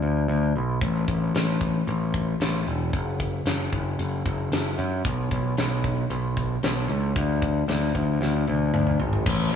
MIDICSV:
0, 0, Header, 1, 3, 480
1, 0, Start_track
1, 0, Key_signature, 3, "major"
1, 0, Tempo, 527704
1, 744, Time_signature, 4, 2, 24, 8
1, 8693, End_track
2, 0, Start_track
2, 0, Title_t, "Picked electric bass"
2, 0, Program_c, 0, 34
2, 22, Note_on_c, 0, 38, 66
2, 234, Note_off_c, 0, 38, 0
2, 258, Note_on_c, 0, 38, 74
2, 473, Note_off_c, 0, 38, 0
2, 505, Note_on_c, 0, 35, 67
2, 717, Note_off_c, 0, 35, 0
2, 741, Note_on_c, 0, 33, 73
2, 955, Note_off_c, 0, 33, 0
2, 982, Note_on_c, 0, 33, 68
2, 1195, Note_off_c, 0, 33, 0
2, 1223, Note_on_c, 0, 33, 74
2, 1649, Note_off_c, 0, 33, 0
2, 1705, Note_on_c, 0, 33, 77
2, 2130, Note_off_c, 0, 33, 0
2, 2184, Note_on_c, 0, 33, 75
2, 2397, Note_off_c, 0, 33, 0
2, 2424, Note_on_c, 0, 28, 63
2, 2637, Note_off_c, 0, 28, 0
2, 2668, Note_on_c, 0, 30, 76
2, 3092, Note_off_c, 0, 30, 0
2, 3143, Note_on_c, 0, 30, 79
2, 3358, Note_off_c, 0, 30, 0
2, 3387, Note_on_c, 0, 30, 73
2, 3600, Note_off_c, 0, 30, 0
2, 3628, Note_on_c, 0, 30, 78
2, 3840, Note_off_c, 0, 30, 0
2, 3871, Note_on_c, 0, 30, 72
2, 4082, Note_off_c, 0, 30, 0
2, 4110, Note_on_c, 0, 30, 68
2, 4321, Note_off_c, 0, 30, 0
2, 4348, Note_on_c, 0, 42, 69
2, 4561, Note_off_c, 0, 42, 0
2, 4593, Note_on_c, 0, 35, 71
2, 4803, Note_off_c, 0, 35, 0
2, 4835, Note_on_c, 0, 35, 70
2, 5045, Note_off_c, 0, 35, 0
2, 5077, Note_on_c, 0, 35, 74
2, 5498, Note_off_c, 0, 35, 0
2, 5551, Note_on_c, 0, 35, 85
2, 5975, Note_off_c, 0, 35, 0
2, 6033, Note_on_c, 0, 35, 78
2, 6244, Note_off_c, 0, 35, 0
2, 6270, Note_on_c, 0, 37, 70
2, 6482, Note_off_c, 0, 37, 0
2, 6514, Note_on_c, 0, 38, 75
2, 6936, Note_off_c, 0, 38, 0
2, 6988, Note_on_c, 0, 38, 82
2, 7200, Note_off_c, 0, 38, 0
2, 7229, Note_on_c, 0, 38, 64
2, 7441, Note_off_c, 0, 38, 0
2, 7466, Note_on_c, 0, 38, 77
2, 7679, Note_off_c, 0, 38, 0
2, 7717, Note_on_c, 0, 38, 65
2, 7925, Note_off_c, 0, 38, 0
2, 7947, Note_on_c, 0, 38, 78
2, 8159, Note_off_c, 0, 38, 0
2, 8188, Note_on_c, 0, 32, 66
2, 8399, Note_off_c, 0, 32, 0
2, 8423, Note_on_c, 0, 33, 90
2, 8640, Note_off_c, 0, 33, 0
2, 8693, End_track
3, 0, Start_track
3, 0, Title_t, "Drums"
3, 741, Note_on_c, 9, 36, 90
3, 741, Note_on_c, 9, 42, 62
3, 831, Note_off_c, 9, 36, 0
3, 832, Note_off_c, 9, 42, 0
3, 983, Note_on_c, 9, 36, 68
3, 984, Note_on_c, 9, 42, 49
3, 1074, Note_off_c, 9, 36, 0
3, 1075, Note_off_c, 9, 42, 0
3, 1226, Note_on_c, 9, 42, 63
3, 1235, Note_on_c, 9, 38, 87
3, 1317, Note_off_c, 9, 42, 0
3, 1326, Note_off_c, 9, 38, 0
3, 1464, Note_on_c, 9, 36, 70
3, 1464, Note_on_c, 9, 42, 45
3, 1555, Note_off_c, 9, 36, 0
3, 1555, Note_off_c, 9, 42, 0
3, 1708, Note_on_c, 9, 42, 66
3, 1799, Note_off_c, 9, 42, 0
3, 1946, Note_on_c, 9, 36, 67
3, 1948, Note_on_c, 9, 42, 46
3, 2037, Note_off_c, 9, 36, 0
3, 2039, Note_off_c, 9, 42, 0
3, 2191, Note_on_c, 9, 42, 65
3, 2200, Note_on_c, 9, 38, 94
3, 2282, Note_off_c, 9, 42, 0
3, 2291, Note_off_c, 9, 38, 0
3, 2434, Note_on_c, 9, 42, 47
3, 2525, Note_off_c, 9, 42, 0
3, 2668, Note_on_c, 9, 36, 88
3, 2668, Note_on_c, 9, 42, 75
3, 2759, Note_off_c, 9, 36, 0
3, 2759, Note_off_c, 9, 42, 0
3, 2909, Note_on_c, 9, 36, 66
3, 2910, Note_on_c, 9, 42, 49
3, 3000, Note_off_c, 9, 36, 0
3, 3001, Note_off_c, 9, 42, 0
3, 3146, Note_on_c, 9, 42, 76
3, 3155, Note_on_c, 9, 38, 89
3, 3237, Note_off_c, 9, 42, 0
3, 3246, Note_off_c, 9, 38, 0
3, 3390, Note_on_c, 9, 36, 58
3, 3390, Note_on_c, 9, 42, 51
3, 3480, Note_off_c, 9, 42, 0
3, 3481, Note_off_c, 9, 36, 0
3, 3631, Note_on_c, 9, 42, 67
3, 3722, Note_off_c, 9, 42, 0
3, 3872, Note_on_c, 9, 36, 61
3, 3874, Note_on_c, 9, 42, 47
3, 3963, Note_off_c, 9, 36, 0
3, 3965, Note_off_c, 9, 42, 0
3, 4113, Note_on_c, 9, 42, 67
3, 4122, Note_on_c, 9, 38, 90
3, 4204, Note_off_c, 9, 42, 0
3, 4213, Note_off_c, 9, 38, 0
3, 4354, Note_on_c, 9, 42, 48
3, 4444, Note_off_c, 9, 42, 0
3, 4591, Note_on_c, 9, 42, 67
3, 4593, Note_on_c, 9, 36, 95
3, 4682, Note_off_c, 9, 42, 0
3, 4684, Note_off_c, 9, 36, 0
3, 4829, Note_on_c, 9, 42, 50
3, 4832, Note_on_c, 9, 36, 69
3, 4920, Note_off_c, 9, 42, 0
3, 4923, Note_off_c, 9, 36, 0
3, 5070, Note_on_c, 9, 42, 63
3, 5079, Note_on_c, 9, 38, 87
3, 5161, Note_off_c, 9, 42, 0
3, 5170, Note_off_c, 9, 38, 0
3, 5313, Note_on_c, 9, 36, 61
3, 5314, Note_on_c, 9, 42, 42
3, 5404, Note_off_c, 9, 36, 0
3, 5405, Note_off_c, 9, 42, 0
3, 5553, Note_on_c, 9, 42, 59
3, 5644, Note_off_c, 9, 42, 0
3, 5792, Note_on_c, 9, 42, 43
3, 5794, Note_on_c, 9, 36, 62
3, 5883, Note_off_c, 9, 42, 0
3, 5885, Note_off_c, 9, 36, 0
3, 6032, Note_on_c, 9, 42, 65
3, 6041, Note_on_c, 9, 38, 88
3, 6123, Note_off_c, 9, 42, 0
3, 6132, Note_off_c, 9, 38, 0
3, 6274, Note_on_c, 9, 42, 48
3, 6365, Note_off_c, 9, 42, 0
3, 6511, Note_on_c, 9, 42, 76
3, 6512, Note_on_c, 9, 36, 99
3, 6602, Note_off_c, 9, 42, 0
3, 6603, Note_off_c, 9, 36, 0
3, 6751, Note_on_c, 9, 36, 70
3, 6751, Note_on_c, 9, 42, 48
3, 6841, Note_off_c, 9, 42, 0
3, 6842, Note_off_c, 9, 36, 0
3, 6992, Note_on_c, 9, 42, 80
3, 7001, Note_on_c, 9, 38, 83
3, 7083, Note_off_c, 9, 42, 0
3, 7092, Note_off_c, 9, 38, 0
3, 7231, Note_on_c, 9, 36, 65
3, 7233, Note_on_c, 9, 42, 47
3, 7322, Note_off_c, 9, 36, 0
3, 7324, Note_off_c, 9, 42, 0
3, 7480, Note_on_c, 9, 38, 46
3, 7571, Note_off_c, 9, 38, 0
3, 7709, Note_on_c, 9, 48, 49
3, 7800, Note_off_c, 9, 48, 0
3, 7948, Note_on_c, 9, 47, 67
3, 8039, Note_off_c, 9, 47, 0
3, 8066, Note_on_c, 9, 45, 51
3, 8157, Note_off_c, 9, 45, 0
3, 8183, Note_on_c, 9, 43, 69
3, 8274, Note_off_c, 9, 43, 0
3, 8304, Note_on_c, 9, 43, 64
3, 8395, Note_off_c, 9, 43, 0
3, 8423, Note_on_c, 9, 49, 119
3, 8423, Note_on_c, 9, 57, 65
3, 8425, Note_on_c, 9, 36, 109
3, 8514, Note_off_c, 9, 49, 0
3, 8514, Note_off_c, 9, 57, 0
3, 8516, Note_off_c, 9, 36, 0
3, 8693, End_track
0, 0, End_of_file